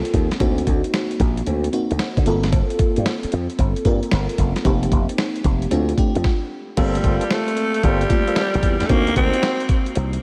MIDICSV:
0, 0, Header, 1, 7, 480
1, 0, Start_track
1, 0, Key_signature, -2, "minor"
1, 0, Tempo, 530973
1, 363, Time_signature, 4, 2, 24, 8
1, 9243, End_track
2, 0, Start_track
2, 0, Title_t, "Tonewheel organ"
2, 0, Program_c, 0, 16
2, 6120, Note_on_c, 0, 58, 92
2, 6121, Note_on_c, 0, 60, 89
2, 6123, Note_on_c, 0, 65, 94
2, 6125, Note_on_c, 0, 69, 111
2, 6304, Note_off_c, 0, 58, 0
2, 6305, Note_off_c, 0, 60, 0
2, 6306, Note_off_c, 0, 65, 0
2, 6307, Note_off_c, 0, 69, 0
2, 6358, Note_on_c, 0, 58, 82
2, 6361, Note_on_c, 0, 60, 70
2, 6363, Note_on_c, 0, 65, 70
2, 6364, Note_on_c, 0, 69, 88
2, 6543, Note_off_c, 0, 58, 0
2, 6545, Note_off_c, 0, 60, 0
2, 6546, Note_off_c, 0, 65, 0
2, 6546, Note_off_c, 0, 69, 0
2, 7080, Note_on_c, 0, 58, 77
2, 7083, Note_on_c, 0, 60, 72
2, 7084, Note_on_c, 0, 65, 75
2, 7085, Note_on_c, 0, 69, 90
2, 7265, Note_off_c, 0, 58, 0
2, 7266, Note_off_c, 0, 60, 0
2, 7267, Note_off_c, 0, 65, 0
2, 7267, Note_off_c, 0, 69, 0
2, 7477, Note_on_c, 0, 58, 73
2, 7479, Note_on_c, 0, 60, 67
2, 7481, Note_on_c, 0, 65, 66
2, 7482, Note_on_c, 0, 69, 82
2, 7608, Note_off_c, 0, 58, 0
2, 7609, Note_off_c, 0, 60, 0
2, 7610, Note_off_c, 0, 65, 0
2, 7610, Note_off_c, 0, 69, 0
2, 8038, Note_on_c, 0, 58, 100
2, 8041, Note_on_c, 0, 60, 88
2, 8042, Note_on_c, 0, 63, 90
2, 8043, Note_on_c, 0, 66, 102
2, 8223, Note_off_c, 0, 58, 0
2, 8225, Note_off_c, 0, 60, 0
2, 8225, Note_off_c, 0, 63, 0
2, 8226, Note_off_c, 0, 66, 0
2, 8280, Note_on_c, 0, 58, 81
2, 8282, Note_on_c, 0, 60, 76
2, 8283, Note_on_c, 0, 63, 73
2, 8285, Note_on_c, 0, 66, 89
2, 8464, Note_off_c, 0, 58, 0
2, 8465, Note_off_c, 0, 60, 0
2, 8466, Note_off_c, 0, 63, 0
2, 8467, Note_off_c, 0, 66, 0
2, 9243, End_track
3, 0, Start_track
3, 0, Title_t, "FM electric piano"
3, 0, Program_c, 1, 5
3, 0, Control_c, 1, 64, 127
3, 0, Note_on_c, 1, 58, 88
3, 0, Note_on_c, 1, 60, 80
3, 0, Note_on_c, 1, 65, 81
3, 0, Note_on_c, 1, 69, 94
3, 189, Note_off_c, 1, 58, 0
3, 191, Note_off_c, 1, 60, 0
3, 193, Note_off_c, 1, 65, 0
3, 194, Note_off_c, 1, 69, 0
3, 357, Note_on_c, 1, 58, 88
3, 361, Note_on_c, 1, 60, 88
3, 364, Note_on_c, 1, 63, 84
3, 369, Note_on_c, 1, 66, 101
3, 373, Control_c, 1, 64, 0
3, 555, Control_c, 1, 64, 127
3, 1071, Note_off_c, 1, 58, 0
3, 1074, Note_off_c, 1, 60, 0
3, 1075, Note_off_c, 1, 63, 0
3, 1077, Note_off_c, 1, 66, 0
3, 1560, Note_on_c, 1, 58, 87
3, 1563, Note_on_c, 1, 60, 80
3, 1566, Note_on_c, 1, 63, 77
3, 1572, Note_on_c, 1, 66, 96
3, 2031, Note_off_c, 1, 58, 0
3, 2033, Note_off_c, 1, 60, 0
3, 2042, Note_on_c, 1, 58, 92
3, 2044, Note_on_c, 1, 60, 92
3, 2045, Note_off_c, 1, 63, 0
3, 2047, Note_on_c, 1, 65, 83
3, 2048, Note_off_c, 1, 66, 0
3, 2052, Note_on_c, 1, 69, 104
3, 2054, Control_c, 1, 64, 0
3, 2214, Control_c, 1, 64, 127
3, 2826, Note_off_c, 1, 58, 0
3, 2827, Note_off_c, 1, 60, 0
3, 2829, Note_off_c, 1, 65, 0
3, 2831, Note_off_c, 1, 69, 0
3, 3482, Note_on_c, 1, 58, 86
3, 3486, Note_on_c, 1, 60, 78
3, 3489, Note_on_c, 1, 65, 85
3, 3493, Note_on_c, 1, 70, 96
3, 4029, Note_off_c, 1, 58, 0
3, 4031, Note_off_c, 1, 60, 0
3, 4033, Note_off_c, 1, 65, 0
3, 4035, Note_off_c, 1, 70, 0
3, 4198, Note_on_c, 1, 58, 91
3, 4202, Note_on_c, 1, 60, 84
3, 4205, Note_on_c, 1, 63, 81
3, 4208, Note_on_c, 1, 67, 97
3, 4217, Control_c, 1, 64, 0
3, 4367, Control_c, 1, 64, 127
3, 4912, Note_off_c, 1, 58, 0
3, 4914, Note_off_c, 1, 60, 0
3, 4916, Note_off_c, 1, 63, 0
3, 4917, Note_off_c, 1, 67, 0
3, 5158, Note_on_c, 1, 57, 82
3, 5161, Note_on_c, 1, 60, 77
3, 5167, Note_on_c, 1, 62, 78
3, 5170, Note_on_c, 1, 65, 96
3, 5175, Control_c, 1, 64, 0
3, 5339, Control_c, 1, 64, 127
3, 5368, Note_off_c, 1, 57, 0
3, 5370, Note_off_c, 1, 60, 0
3, 5373, Note_off_c, 1, 62, 0
3, 5374, Note_off_c, 1, 65, 0
3, 5399, Note_on_c, 1, 57, 89
3, 5402, Note_on_c, 1, 60, 79
3, 5405, Note_on_c, 1, 62, 80
3, 5410, Note_on_c, 1, 67, 100
3, 5642, Note_off_c, 1, 57, 0
3, 5643, Note_off_c, 1, 60, 0
3, 5644, Note_off_c, 1, 62, 0
3, 5647, Note_off_c, 1, 67, 0
3, 5657, Control_c, 1, 64, 0
3, 6118, Note_on_c, 1, 57, 81
3, 6123, Note_on_c, 1, 58, 71
3, 6125, Note_on_c, 1, 60, 73
3, 6129, Note_on_c, 1, 65, 84
3, 6290, Control_c, 1, 64, 127
3, 6832, Note_off_c, 1, 57, 0
3, 6834, Note_off_c, 1, 58, 0
3, 6836, Note_off_c, 1, 60, 0
3, 6837, Note_off_c, 1, 65, 0
3, 7316, Note_on_c, 1, 57, 73
3, 7318, Note_on_c, 1, 58, 73
3, 7322, Note_on_c, 1, 60, 72
3, 7325, Note_on_c, 1, 65, 91
3, 7866, Note_off_c, 1, 57, 0
3, 7867, Note_off_c, 1, 58, 0
3, 7869, Note_off_c, 1, 60, 0
3, 7871, Note_off_c, 1, 65, 0
3, 8034, Note_on_c, 1, 58, 80
3, 8040, Note_on_c, 1, 60, 71
3, 8043, Note_on_c, 1, 63, 72
3, 8046, Note_on_c, 1, 66, 83
3, 8057, Control_c, 1, 64, 0
3, 8195, Control_c, 1, 64, 127
3, 8750, Note_off_c, 1, 58, 0
3, 8753, Note_off_c, 1, 60, 0
3, 8755, Note_off_c, 1, 63, 0
3, 8756, Note_off_c, 1, 66, 0
3, 9243, End_track
4, 0, Start_track
4, 0, Title_t, "Alto saxophone"
4, 0, Program_c, 2, 65
4, 6129, Note_on_c, 2, 55, 76
4, 6610, Note_on_c, 2, 57, 85
4, 6624, Note_off_c, 2, 55, 0
4, 7087, Note_on_c, 2, 55, 95
4, 7100, Note_off_c, 2, 57, 0
4, 8008, Note_on_c, 2, 57, 72
4, 8022, Note_off_c, 2, 55, 0
4, 8048, Note_on_c, 2, 58, 97
4, 8062, Note_off_c, 2, 57, 0
4, 8284, Note_off_c, 2, 58, 0
4, 8289, Note_on_c, 2, 60, 100
4, 8733, Note_off_c, 2, 60, 0
4, 9243, End_track
5, 0, Start_track
5, 0, Title_t, "Slap bass"
5, 0, Program_c, 3, 36
5, 127, Note_on_c, 3, 39, 86
5, 248, Note_off_c, 3, 39, 0
5, 368, Note_on_c, 3, 38, 103
5, 552, Note_off_c, 3, 38, 0
5, 609, Note_on_c, 3, 38, 84
5, 730, Note_off_c, 3, 38, 0
5, 1085, Note_on_c, 3, 34, 85
5, 1270, Note_off_c, 3, 34, 0
5, 1327, Note_on_c, 3, 38, 95
5, 1512, Note_off_c, 3, 38, 0
5, 1728, Note_on_c, 3, 38, 85
5, 1789, Note_off_c, 3, 38, 0
5, 1965, Note_on_c, 3, 50, 100
5, 2027, Note_off_c, 3, 50, 0
5, 2050, Note_on_c, 3, 31, 96
5, 2356, Note_off_c, 3, 31, 0
5, 2690, Note_on_c, 3, 43, 103
5, 2750, Note_off_c, 3, 43, 0
5, 3011, Note_on_c, 3, 41, 85
5, 3131, Note_off_c, 3, 41, 0
5, 3245, Note_on_c, 3, 31, 97
5, 3367, Note_off_c, 3, 31, 0
5, 3484, Note_on_c, 3, 43, 86
5, 3606, Note_off_c, 3, 43, 0
5, 3729, Note_on_c, 3, 31, 91
5, 3850, Note_off_c, 3, 31, 0
5, 3964, Note_on_c, 3, 30, 89
5, 4087, Note_off_c, 3, 30, 0
5, 4207, Note_on_c, 3, 29, 110
5, 4391, Note_off_c, 3, 29, 0
5, 4449, Note_on_c, 3, 29, 94
5, 4569, Note_off_c, 3, 29, 0
5, 4924, Note_on_c, 3, 29, 95
5, 5110, Note_off_c, 3, 29, 0
5, 5168, Note_on_c, 3, 38, 101
5, 5352, Note_off_c, 3, 38, 0
5, 5567, Note_on_c, 3, 41, 91
5, 5628, Note_off_c, 3, 41, 0
5, 6126, Note_on_c, 3, 31, 107
5, 6311, Note_off_c, 3, 31, 0
5, 6366, Note_on_c, 3, 31, 88
5, 6488, Note_off_c, 3, 31, 0
5, 7084, Note_on_c, 3, 31, 86
5, 7270, Note_off_c, 3, 31, 0
5, 7726, Note_on_c, 3, 34, 85
5, 7788, Note_off_c, 3, 34, 0
5, 7804, Note_on_c, 3, 40, 86
5, 7926, Note_off_c, 3, 40, 0
5, 7966, Note_on_c, 3, 39, 89
5, 8027, Note_off_c, 3, 39, 0
5, 8045, Note_on_c, 3, 38, 115
5, 8230, Note_off_c, 3, 38, 0
5, 8286, Note_on_c, 3, 38, 92
5, 8408, Note_off_c, 3, 38, 0
5, 9007, Note_on_c, 3, 36, 94
5, 9192, Note_off_c, 3, 36, 0
5, 9243, End_track
6, 0, Start_track
6, 0, Title_t, "Muted slap bass strokes"
6, 2528, Note_on_c, 9, 29, 42
6, 2618, Note_off_c, 9, 29, 0
6, 2930, Note_on_c, 9, 29, 48
6, 3020, Note_off_c, 9, 29, 0
6, 9243, End_track
7, 0, Start_track
7, 0, Title_t, "Drums"
7, 45, Note_on_c, 9, 42, 54
7, 123, Note_on_c, 9, 36, 74
7, 124, Note_off_c, 9, 42, 0
7, 124, Note_on_c, 9, 42, 80
7, 214, Note_off_c, 9, 36, 0
7, 214, Note_off_c, 9, 42, 0
7, 283, Note_on_c, 9, 42, 54
7, 286, Note_on_c, 9, 38, 65
7, 363, Note_off_c, 9, 42, 0
7, 363, Note_on_c, 9, 42, 76
7, 363, Note_on_c, 9, 56, 84
7, 364, Note_on_c, 9, 36, 103
7, 376, Note_off_c, 9, 38, 0
7, 454, Note_off_c, 9, 42, 0
7, 454, Note_off_c, 9, 56, 0
7, 455, Note_off_c, 9, 36, 0
7, 525, Note_on_c, 9, 42, 58
7, 605, Note_off_c, 9, 42, 0
7, 605, Note_on_c, 9, 36, 90
7, 605, Note_on_c, 9, 42, 74
7, 695, Note_off_c, 9, 42, 0
7, 696, Note_off_c, 9, 36, 0
7, 762, Note_on_c, 9, 42, 61
7, 845, Note_on_c, 9, 56, 63
7, 847, Note_off_c, 9, 42, 0
7, 847, Note_on_c, 9, 38, 107
7, 847, Note_on_c, 9, 42, 68
7, 935, Note_off_c, 9, 56, 0
7, 937, Note_off_c, 9, 42, 0
7, 938, Note_off_c, 9, 38, 0
7, 1003, Note_on_c, 9, 42, 50
7, 1082, Note_off_c, 9, 42, 0
7, 1082, Note_on_c, 9, 42, 71
7, 1083, Note_on_c, 9, 36, 86
7, 1173, Note_off_c, 9, 36, 0
7, 1173, Note_off_c, 9, 42, 0
7, 1242, Note_on_c, 9, 42, 50
7, 1324, Note_off_c, 9, 42, 0
7, 1324, Note_on_c, 9, 42, 72
7, 1328, Note_on_c, 9, 56, 58
7, 1414, Note_off_c, 9, 42, 0
7, 1418, Note_off_c, 9, 56, 0
7, 1484, Note_on_c, 9, 42, 56
7, 1564, Note_off_c, 9, 42, 0
7, 1564, Note_on_c, 9, 42, 73
7, 1655, Note_off_c, 9, 42, 0
7, 1724, Note_on_c, 9, 42, 53
7, 1800, Note_on_c, 9, 38, 115
7, 1801, Note_off_c, 9, 42, 0
7, 1801, Note_on_c, 9, 42, 63
7, 1806, Note_on_c, 9, 56, 63
7, 1891, Note_off_c, 9, 38, 0
7, 1891, Note_off_c, 9, 42, 0
7, 1896, Note_off_c, 9, 56, 0
7, 1962, Note_on_c, 9, 36, 93
7, 1964, Note_on_c, 9, 42, 50
7, 2043, Note_off_c, 9, 42, 0
7, 2043, Note_on_c, 9, 42, 82
7, 2053, Note_off_c, 9, 36, 0
7, 2133, Note_off_c, 9, 42, 0
7, 2200, Note_on_c, 9, 42, 51
7, 2203, Note_on_c, 9, 38, 61
7, 2282, Note_on_c, 9, 56, 81
7, 2283, Note_off_c, 9, 42, 0
7, 2283, Note_on_c, 9, 42, 77
7, 2284, Note_on_c, 9, 36, 101
7, 2293, Note_off_c, 9, 38, 0
7, 2372, Note_off_c, 9, 56, 0
7, 2373, Note_off_c, 9, 42, 0
7, 2374, Note_off_c, 9, 36, 0
7, 2444, Note_on_c, 9, 42, 59
7, 2522, Note_off_c, 9, 42, 0
7, 2522, Note_on_c, 9, 42, 78
7, 2524, Note_on_c, 9, 36, 93
7, 2612, Note_off_c, 9, 42, 0
7, 2615, Note_off_c, 9, 36, 0
7, 2679, Note_on_c, 9, 42, 64
7, 2764, Note_off_c, 9, 42, 0
7, 2764, Note_on_c, 9, 38, 109
7, 2764, Note_on_c, 9, 42, 71
7, 2765, Note_on_c, 9, 56, 72
7, 2854, Note_off_c, 9, 42, 0
7, 2855, Note_off_c, 9, 38, 0
7, 2855, Note_off_c, 9, 56, 0
7, 2922, Note_on_c, 9, 42, 52
7, 3001, Note_off_c, 9, 42, 0
7, 3001, Note_on_c, 9, 42, 75
7, 3091, Note_off_c, 9, 42, 0
7, 3161, Note_on_c, 9, 42, 52
7, 3243, Note_off_c, 9, 42, 0
7, 3243, Note_on_c, 9, 36, 93
7, 3243, Note_on_c, 9, 42, 73
7, 3245, Note_on_c, 9, 56, 63
7, 3333, Note_off_c, 9, 36, 0
7, 3333, Note_off_c, 9, 42, 0
7, 3335, Note_off_c, 9, 56, 0
7, 3402, Note_on_c, 9, 42, 54
7, 3480, Note_off_c, 9, 42, 0
7, 3480, Note_on_c, 9, 42, 69
7, 3482, Note_on_c, 9, 36, 82
7, 3570, Note_off_c, 9, 42, 0
7, 3572, Note_off_c, 9, 36, 0
7, 3641, Note_on_c, 9, 42, 55
7, 3720, Note_off_c, 9, 42, 0
7, 3720, Note_on_c, 9, 38, 121
7, 3720, Note_on_c, 9, 42, 68
7, 3723, Note_on_c, 9, 56, 72
7, 3810, Note_off_c, 9, 38, 0
7, 3810, Note_off_c, 9, 42, 0
7, 3813, Note_off_c, 9, 56, 0
7, 3882, Note_on_c, 9, 42, 58
7, 3962, Note_off_c, 9, 42, 0
7, 3962, Note_on_c, 9, 36, 74
7, 3962, Note_on_c, 9, 42, 82
7, 4052, Note_off_c, 9, 36, 0
7, 4052, Note_off_c, 9, 42, 0
7, 4121, Note_on_c, 9, 42, 50
7, 4124, Note_on_c, 9, 38, 61
7, 4202, Note_on_c, 9, 56, 78
7, 4203, Note_off_c, 9, 42, 0
7, 4203, Note_on_c, 9, 42, 76
7, 4204, Note_on_c, 9, 36, 101
7, 4215, Note_off_c, 9, 38, 0
7, 4293, Note_off_c, 9, 42, 0
7, 4293, Note_off_c, 9, 56, 0
7, 4294, Note_off_c, 9, 36, 0
7, 4365, Note_on_c, 9, 42, 62
7, 4445, Note_off_c, 9, 42, 0
7, 4445, Note_on_c, 9, 36, 90
7, 4445, Note_on_c, 9, 42, 76
7, 4535, Note_off_c, 9, 36, 0
7, 4536, Note_off_c, 9, 42, 0
7, 4603, Note_on_c, 9, 42, 64
7, 4684, Note_on_c, 9, 56, 67
7, 4685, Note_off_c, 9, 42, 0
7, 4685, Note_on_c, 9, 42, 69
7, 4686, Note_on_c, 9, 38, 117
7, 4775, Note_off_c, 9, 56, 0
7, 4776, Note_off_c, 9, 38, 0
7, 4776, Note_off_c, 9, 42, 0
7, 4842, Note_on_c, 9, 42, 46
7, 4921, Note_off_c, 9, 42, 0
7, 4921, Note_on_c, 9, 42, 68
7, 4922, Note_on_c, 9, 36, 95
7, 5011, Note_off_c, 9, 42, 0
7, 5012, Note_off_c, 9, 36, 0
7, 5081, Note_on_c, 9, 42, 51
7, 5163, Note_off_c, 9, 42, 0
7, 5163, Note_on_c, 9, 42, 77
7, 5164, Note_on_c, 9, 56, 62
7, 5254, Note_off_c, 9, 42, 0
7, 5254, Note_off_c, 9, 56, 0
7, 5323, Note_on_c, 9, 42, 60
7, 5403, Note_on_c, 9, 36, 88
7, 5404, Note_off_c, 9, 42, 0
7, 5404, Note_on_c, 9, 42, 67
7, 5493, Note_off_c, 9, 36, 0
7, 5494, Note_off_c, 9, 42, 0
7, 5563, Note_on_c, 9, 42, 52
7, 5643, Note_on_c, 9, 36, 102
7, 5643, Note_on_c, 9, 38, 93
7, 5653, Note_off_c, 9, 42, 0
7, 5733, Note_off_c, 9, 36, 0
7, 5733, Note_off_c, 9, 38, 0
7, 6122, Note_on_c, 9, 42, 73
7, 6122, Note_on_c, 9, 49, 99
7, 6122, Note_on_c, 9, 56, 81
7, 6123, Note_on_c, 9, 36, 102
7, 6212, Note_off_c, 9, 42, 0
7, 6212, Note_off_c, 9, 49, 0
7, 6212, Note_off_c, 9, 56, 0
7, 6213, Note_off_c, 9, 36, 0
7, 6284, Note_on_c, 9, 42, 66
7, 6363, Note_off_c, 9, 42, 0
7, 6363, Note_on_c, 9, 42, 75
7, 6364, Note_on_c, 9, 36, 93
7, 6453, Note_off_c, 9, 42, 0
7, 6454, Note_off_c, 9, 36, 0
7, 6518, Note_on_c, 9, 42, 69
7, 6603, Note_on_c, 9, 56, 69
7, 6604, Note_off_c, 9, 42, 0
7, 6604, Note_on_c, 9, 38, 110
7, 6604, Note_on_c, 9, 42, 67
7, 6694, Note_off_c, 9, 42, 0
7, 6694, Note_off_c, 9, 56, 0
7, 6695, Note_off_c, 9, 38, 0
7, 6761, Note_on_c, 9, 42, 49
7, 6841, Note_off_c, 9, 42, 0
7, 6841, Note_on_c, 9, 42, 76
7, 6932, Note_off_c, 9, 42, 0
7, 7000, Note_on_c, 9, 42, 56
7, 7082, Note_off_c, 9, 42, 0
7, 7082, Note_on_c, 9, 36, 90
7, 7082, Note_on_c, 9, 42, 73
7, 7084, Note_on_c, 9, 56, 61
7, 7173, Note_off_c, 9, 36, 0
7, 7173, Note_off_c, 9, 42, 0
7, 7175, Note_off_c, 9, 56, 0
7, 7242, Note_on_c, 9, 42, 55
7, 7321, Note_off_c, 9, 42, 0
7, 7321, Note_on_c, 9, 36, 89
7, 7321, Note_on_c, 9, 42, 77
7, 7412, Note_off_c, 9, 36, 0
7, 7412, Note_off_c, 9, 42, 0
7, 7481, Note_on_c, 9, 42, 55
7, 7558, Note_on_c, 9, 38, 116
7, 7559, Note_off_c, 9, 42, 0
7, 7559, Note_on_c, 9, 42, 62
7, 7562, Note_on_c, 9, 56, 74
7, 7649, Note_off_c, 9, 38, 0
7, 7649, Note_off_c, 9, 42, 0
7, 7652, Note_off_c, 9, 56, 0
7, 7721, Note_on_c, 9, 42, 55
7, 7799, Note_off_c, 9, 42, 0
7, 7799, Note_on_c, 9, 42, 84
7, 7800, Note_on_c, 9, 36, 81
7, 7890, Note_off_c, 9, 42, 0
7, 7891, Note_off_c, 9, 36, 0
7, 7957, Note_on_c, 9, 42, 57
7, 7960, Note_on_c, 9, 38, 59
7, 8040, Note_off_c, 9, 42, 0
7, 8040, Note_on_c, 9, 42, 77
7, 8040, Note_on_c, 9, 56, 90
7, 8042, Note_on_c, 9, 36, 110
7, 8051, Note_off_c, 9, 38, 0
7, 8130, Note_off_c, 9, 42, 0
7, 8130, Note_off_c, 9, 56, 0
7, 8132, Note_off_c, 9, 36, 0
7, 8200, Note_on_c, 9, 42, 62
7, 8281, Note_off_c, 9, 42, 0
7, 8281, Note_on_c, 9, 42, 84
7, 8283, Note_on_c, 9, 36, 95
7, 8372, Note_off_c, 9, 42, 0
7, 8374, Note_off_c, 9, 36, 0
7, 8438, Note_on_c, 9, 42, 70
7, 8521, Note_on_c, 9, 56, 68
7, 8523, Note_off_c, 9, 42, 0
7, 8523, Note_on_c, 9, 42, 72
7, 8524, Note_on_c, 9, 38, 118
7, 8611, Note_off_c, 9, 56, 0
7, 8613, Note_off_c, 9, 42, 0
7, 8614, Note_off_c, 9, 38, 0
7, 8682, Note_on_c, 9, 42, 50
7, 8758, Note_off_c, 9, 42, 0
7, 8758, Note_on_c, 9, 42, 70
7, 8760, Note_on_c, 9, 36, 100
7, 8849, Note_off_c, 9, 42, 0
7, 8851, Note_off_c, 9, 36, 0
7, 8917, Note_on_c, 9, 42, 52
7, 8998, Note_off_c, 9, 42, 0
7, 8998, Note_on_c, 9, 42, 76
7, 9001, Note_on_c, 9, 56, 64
7, 9089, Note_off_c, 9, 42, 0
7, 9091, Note_off_c, 9, 56, 0
7, 9159, Note_on_c, 9, 42, 59
7, 9243, Note_off_c, 9, 42, 0
7, 9243, End_track
0, 0, End_of_file